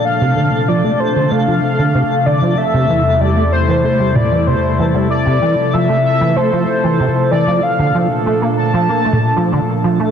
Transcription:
Already playing: ambient pad F3 A3 A4, synth texture A3 A4
0.05 ambient pad C3 D4, soft synth lead F5
0.21 acid bass C3
0.37 acid bass D3
0.68 acid bass F3, soft synth lead D5
0.84 acid bass A3
1.00 soft synth lead C5
1.16 acid bass D3
1.31 acid bass A3, soft synth lead F5
1.47 acid bass F3
1.79 acid bass D3
1.94 acid bass C3
2.26 acid bass D3, soft synth lead D5
2.42 acid bass F3
2.58 ambient pad E2 G3 E4, soft synth lead E5
2.73 acid bass C3
2.89 acid bass E3
3.21 acid bass G3, soft synth lead D5
3.37 acid bass A3
3.52 soft synth lead C5
3.68 acid bass E3
3.84 acid bass A3, soft synth lead C5
4.00 acid bass G3
4.15 soft synth lead D5, mid tom
4.31 acid bass E3
4.47 acid bass C3, soft synth lead C5
4.79 acid bass E3
4.95 acid bass G3
5.10 ambient pad F3 A4, soft synth lead D5
5.26 acid bass C3
5.42 acid bass E3
5.73 acid bass F3, soft synth lead E5
5.89 acid bass A3
6.05 soft synth lead E5
6.21 acid bass E3
6.36 acid bass A3, soft synth lead C5
6.52 acid bass F3
6.84 acid bass E3
7.00 acid bass C3
7.31 acid bass E3, soft synth lead D5
7.47 acid bass F3
7.63 ambient pad A#2 D4 A4, soft synth lead F5
7.79 acid bass D3
7.94 acid bass F3
8.26 acid bass A3
8.42 acid bass A#3
8.57 soft synth lead A5
8.73 acid bass F3
8.89 acid bass A#3
9.05 acid bass A3
9.13 mid tom
9.37 acid bass F3
9.52 acid bass D3
9.84 acid bass F3
10.00 acid bass A3

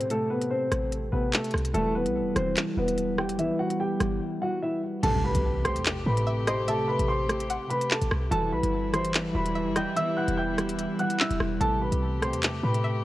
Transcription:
Already playing: 808-style bass A2
0.00 closed hi-hat
0.09 harp C3 A3 G4, grand piano A3 A4, closed hi-hat
0.30 grand piano B3 B4
0.42 closed hi-hat
0.50 grand piano C4 C5
0.71 808-style bass A1, harp C3 A3 G4, cross-stick, closed hi-hat
0.92 closed hi-hat
1.12 808-style bass A1, harp C3 A3 G4, grand piano B3 B4
1.33 grand piano A3 A4, clap, closed hi-hat
1.44 closed hi-hat
1.51 808-style bass C2, cross-stick, closed hi-hat
1.58 closed hi-hat
1.65 closed hi-hat
1.73 808-style bass E1, harp E3 G3 F#4, grand piano A3 A4, closed hi-hat
1.95 grand piano B3 B4
2.06 808-style bass B1, closed hi-hat
2.21 808-style bass E1
2.35 808-style bass E1, harp E3 G3 F#4, grand piano C4 C5, cross-stick, closed hi-hat
2.57 clap, closed hi-hat
2.76 808-style bass E1, harp E3 G3 F#4, grand piano B3 B4
2.88 closed hi-hat
2.98 closed hi-hat
3.18 harp E3 G3 F#4, grand piano G4 G5, cross-stick
3.29 808-style bass G1, closed hi-hat
3.39 808-style bass E1, harp E3 G3 B3, grand piano E4 E5, closed hi-hat
3.59 grand piano F#4 F#5
3.70 closed hi-hat
3.80 grand piano G4 G5
3.99 808-style bass G1, harp E3 G3 F#4, cross-stick, closed hi-hat
4.42 harp E3 G3 F#4, grand piano F#4 F#5
4.62 grand piano E4 E5
5.02 808-style bass A1, harp C3 A3 G4, string section C3 A3 G4, grand piano A4 A5, closed hi-hat, crash, impact
5.24 grand piano B4 B5
5.35 808-style bass C2, closed hi-hat
5.65 harp C3 A3 G4, grand piano C5 C6, cross-stick, closed hi-hat
5.76 808-style bass E2, closed hi-hat
5.85 clap, closed hi-hat
6.06 808-style bass A2, harp C3 A3 G4, grand piano B4 B5
6.17 closed hi-hat
6.27 synth pluck E5
6.46 harp C3 A3 G4, grand piano C5 C6, synth pluck D#5, cross-stick, closed hi-hat
6.67 harp C3 A3 G4, grand piano A4 A5, synth pluck E5, closed hi-hat
6.88 grand piano B4 B5
6.99 808-style bass A1, closed hi-hat
7.08 grand piano C5 C6
7.29 harp C3 A3 G4, cross-stick, closed hi-hat
7.40 closed hi-hat
7.50 synth pluck F#5, closed hi-hat
7.69 harp C3 A3 G4, grand piano B4 B5, closed hi-hat
7.81 closed hi-hat
7.91 grand piano A4 A5, clap
8.02 808-style bass A1, closed hi-hat
8.11 808-style bass C2, cross-stick
8.30 808-style bass E1, harp E3 G3 F#4, string section E3 G3 E4, grand piano A4 A5, closed hi-hat
8.53 808-style bass B1, grand piano B4 B5
8.63 808-style bass G1, closed hi-hat
8.93 harp E3 G3 F#4, grand piano C5 C6, cross-stick, closed hi-hat
9.05 closed hi-hat
9.14 clap, closed hi-hat
9.34 808-style bass E1, harp E3 G3 F#4, grand piano B4 B5
9.46 closed hi-hat
9.55 synth pluck E5
9.66 808-style bass G1
9.75 808-style bass E1, harp E3 G3 F#4, synth pluck D#5, grand piano G5 G6, cross-stick, closed hi-hat
9.96 harp E3 G3 B3, synth pluck E5, grand piano E5 E6, closed hi-hat
10.17 grand piano F#5 F#6
10.28 808-style bass E1, closed hi-hat
10.37 grand piano G5 G6
10.57 harp E3 G3 F#4, cross-stick, closed hi-hat
10.69 closed hi-hat
10.79 closed hi-hat
10.99 harp E3 G3 F#4, grand piano F#5 F#6, closed hi-hat
11.10 closed hi-hat
11.20 grand piano E5 E6, clap
11.31 808-style bass E1, closed hi-hat
11.40 808-style bass E1, cross-stick
11.60 808-style bass A1, harp C3 A3 G4, string section C3 A3 G4, grand piano A4 A5, closed hi-hat
11.82 grand piano B4 B5
11.92 808-style bass C2, closed hi-hat
12.22 harp C3 A3 G4, grand piano C5 C6, cross-stick, closed hi-hat
12.33 808-style bass E2, closed hi-hat
12.43 clap, closed hi-hat
12.63 808-style bass A2, harp C3 A3 G4, grand piano B4 B5
12.74 closed hi-hat
12.84 synth pluck E5

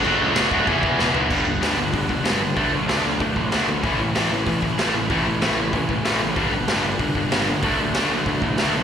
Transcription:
0.05 picked electric bass F#1, distorted electric guitar D3 F#3 A3 D4 F#4, crash
0.21 picked electric bass C#2
0.35 picked electric bass F#1, distorted electric guitar D3 F#3 A3 D4 F#4, snare, crash
0.51 picked electric bass F#1, distorted electric guitar D3 F#3 A3 D4 F#4, kick
0.67 picked electric bass E1, distorted electric guitar E2 B2 E3 B3 E4 G#4, kick, crash
0.83 kick
0.99 picked electric bass E1, distorted electric guitar E2 B2 E3 B3 E4 G#4, snare
1.15 picked electric bass B1, distorted electric guitar E2 B2 E3 B3 E4 G#4, floor tom
1.30 picked electric bass G1, distorted electric guitar G2 D3 G3 B3 D4, kick, crash
1.46 distorted electric guitar G2 D3
1.62 picked electric bass G1, distorted electric guitar G2 D3 G3, snare, open hi-hat
1.77 picked electric bass G1, distorted electric guitar G2 D3 G3 B3 D4
1.93 picked electric bass G1, distorted electric guitar G2 D3, kick, open hi-hat
2.09 distorted electric guitar G2 D3, kick
2.25 picked electric bass G1, distorted electric guitar G2 D3 G3, snare, open hi-hat
2.42 distorted electric guitar G2 D3
2.56 picked electric bass D2, distorted electric guitar D3 F#3 A3 D4, kick, open hi-hat
2.73 picked electric bass D2, distorted electric guitar D3 F#3 A3
2.88 picked electric bass D2, distorted electric guitar D3 F#3 A3 D4, snare, open hi-hat
3.04 distorted electric guitar D3 F#3 A3 D4
3.20 picked electric bass D2, distorted electric guitar D3 F#3 A3, kick, open hi-hat
3.36 picked electric bass A1, distorted electric guitar D3 F#3 A3, kick
3.52 picked electric bass D2, distorted electric guitar D3 F#3 A3 D4, snare, open hi-hat
3.68 picked electric bass D2, distorted electric guitar D3 F#3 A3
3.84 picked electric bass A1, distorted electric guitar A2 E3 A3 C#4 E4, kick, open hi-hat
4.00 distorted electric guitar A2 E3
4.15 picked electric bass A1, distorted electric guitar A2 E3 A3, snare, open hi-hat
4.31 picked electric bass A1, distorted electric guitar A2 E3 A3 C#4 E4
4.46 picked electric bass A1, distorted electric guitar A2 E3, kick, open hi-hat
4.62 distorted electric guitar A2 E3, kick
4.78 picked electric bass A1, distorted electric guitar A2 E3 A3, snare, open hi-hat
4.95 distorted electric guitar A2 E3
5.10 picked electric bass A1, distorted electric guitar A2 E3 A3 C#4 E4, kick, open hi-hat
5.26 picked electric bass A1, distorted electric guitar A2 E3
5.41 picked electric bass A1, distorted electric guitar A2 E3 A3, snare, open hi-hat
5.57 distorted electric guitar A2 E3 A3 C#4 E4
5.73 picked electric bass A1, distorted electric guitar A2 E3, kick, open hi-hat
5.89 picked electric bass E1, distorted electric guitar A2 E3, kick
6.05 picked electric bass A1, distorted electric guitar A2 E3 A3, snare, open hi-hat
6.20 picked electric bass A1, distorted electric guitar A2 E3
6.35 picked electric bass G1, distorted electric guitar G2 D3 G3 B3 D4, kick, open hi-hat
6.51 distorted electric guitar G2 D3
6.68 picked electric bass G1, distorted electric guitar G2 D3 G3, snare, open hi-hat
6.83 picked electric bass G1, distorted electric guitar G2 D3 G3 B3 D4
6.99 picked electric bass G1, distorted electric guitar G2 D3, kick, open hi-hat
7.15 distorted electric guitar G2 D3, kick
7.31 picked electric bass G1, distorted electric guitar G2 D3 G3, snare, open hi-hat
7.48 distorted electric guitar G2 D3
7.63 picked electric bass D2, distorted electric guitar D3 F#3 A3 D4, kick, open hi-hat
7.79 picked electric bass D2, distorted electric guitar D3 F#3 A3
7.94 picked electric bass D2, distorted electric guitar D3 F#3 A3 D4, snare, open hi-hat
8.10 distorted electric guitar D3 F#3 A3 D4
8.26 picked electric bass D2, distorted electric guitar D3 F#3 A3, kick, open hi-hat
8.42 picked electric bass A1, distorted electric guitar D3 F#3 A3, kick
8.58 picked electric bass D2, distorted electric guitar D3 F#3 A3 D4, snare, open hi-hat
8.75 picked electric bass B1, distorted electric guitar D3 F#3 A3

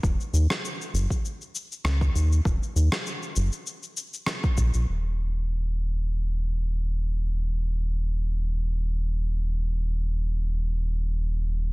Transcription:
0.03 analog synth bass D#1, kick, shaker
0.21 shaker
0.33 analog synth bass D#2, shaker
0.50 cross-stick, shaker
0.65 shaker
0.82 shaker
0.94 analog synth bass F#1, shaker
1.10 kick, shaker
1.25 shaker
1.42 shaker
1.55 shaker
1.72 shaker
1.84 analog synth bass C#2, cross-stick, shaker
2.01 kick, shaker
2.15 analog synth bass D#2, shaker
2.32 shaker
2.45 analog synth bass D#1, kick, shaker
2.63 shaker
2.76 analog synth bass D#2, shaker
2.92 cross-stick, shaker
3.07 shaker
3.23 shaker
3.36 analog synth bass F#1, shaker
3.53 shaker
3.67 shaker
3.83 shaker
3.97 shaker
4.14 shaker
4.26 cross-stick, shaker
4.44 kick, shaker
4.58 analog synth bass A#1, kick, shaker
4.74 analog synth bass A#1, shaker
4.88 analog synth bass D#1

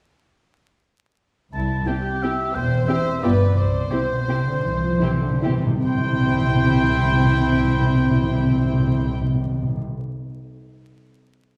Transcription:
1.53 cello section C2, double bass section C2, violin section E4, oboe A5
1.87 viola section C4 E4, violin section G4, oboe G5
2.22 viola section C4 E4, violin section G4, oboe E5
2.54 double bass section E1, cello section E2, violin section C5, oboe G5
2.88 viola section C4 E4, violin section G4 C5, oboe E5
3.23 double bass section G1, cello section G2, viola section B3 F4, violin section G4 B4, oboe D5
3.57 double bass section C2, cello section C3, violin section C5, oboe D5
3.87 timpani C3, oboe C5
3.91 cello section C3, viola section C4 E4, violin section G4
4.03 timpani C3
4.10 cello section B2, timpani C3
4.19 timpani C3
4.28 timpani C3, cello section C3, viola section C4 E4, violin section G4
4.44 timpani C3, cello section D3
4.52 timpani C3
4.59 timpani C3
4.64 double bass section C2, timpani C3, cello section E3
4.76 timpani C3
4.82 timpani C3, cello section F3
4.93 timpani C3
5.01 timpani C3, cello section E3, viola section C4 E4, violin section G4
5.11 timpani C3
5.20 timpani C3, cello section D3
5.30 timpani C3
5.38 timpani C3
5.43 cello section E3, viola section C4 E4, violin section G4
5.48 timpani C3
5.58 timpani C3
5.63 cello section C3, timpani C3
5.84 double bass section C2, cello section C3, timpani C3, viola section C4, violin section E4 G5, oboe C5
5.91 timpani C3
5.98 timpani C3
6.06 timpani C3
6.13 timpani C3
6.20 timpani C3
6.27 timpani C3
6.34 timpani C3
6.41 timpani C3
6.48 timpani C3
6.55 timpani C3
6.62 timpani C3
6.69 timpani C3
6.76 timpani C3
6.83 timpani C3
6.90 timpani C3
6.97 timpani C3
7.04 timpani C3
7.11 timpani C3
7.18 timpani C3
7.25 timpani C3
7.32 timpani C3
7.40 timpani C3
7.46 timpani C3
7.53 timpani C3
7.60 timpani C3
7.67 timpani C3
7.74 timpani C3
7.81 timpani C3
7.88 timpani C3
7.95 timpani C3
8.02 timpani C3
8.09 timpani C3
8.16 timpani C3
8.23 timpani C3
8.30 timpani C3
8.37 timpani C3
8.44 timpani C3
8.51 timpani C3
8.57 timpani C3
8.64 timpani C3
8.72 timpani C3
8.79 timpani C3
8.86 timpani C3
8.93 timpani C3
8.99 timpani C3
9.07 timpani C3
9.14 timpani C3
9.21 timpani C3
9.27 timpani C3
9.34 timpani C3
9.41 timpani C3
9.47 timpani C3
9.55 timpani C3
9.62 timpani C3
9.69 timpani C3
9.77 timpani C3

